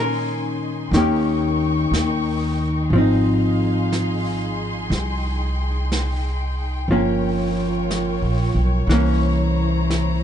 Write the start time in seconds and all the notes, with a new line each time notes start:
Already playing: A#2 D#3 G#3 C#4 D#4 G#5 C6
0.00 A#4
0.91 D#2 D#3 A#4 G5 C#6, brush sweep, snare
0.95 A#3 C#4 G4
1.91 D#2, brush sweep, snare, hi-hat pedal
2.90 G#1 F3 G#4 F5 C6, brush sweep
2.95 C4 D#4
3.92 brush sweep, snare, hi-hat pedal
4.90 C2 G5, brush sweep, snare
5.92 brush sweep, snare, hi-hat pedal
6.87 G1 F3 F4 A#4 C#5, brush sweep
6.92 A#3 C#4
7.91 brush sweep, snare, hi-hat pedal
8.22 A#1
8.54 B1
8.87 C2 E3 E4 C5 A#5, brush sweep, snare
8.92 A#3 C#4
9.90 brush sweep, snare, hi-hat pedal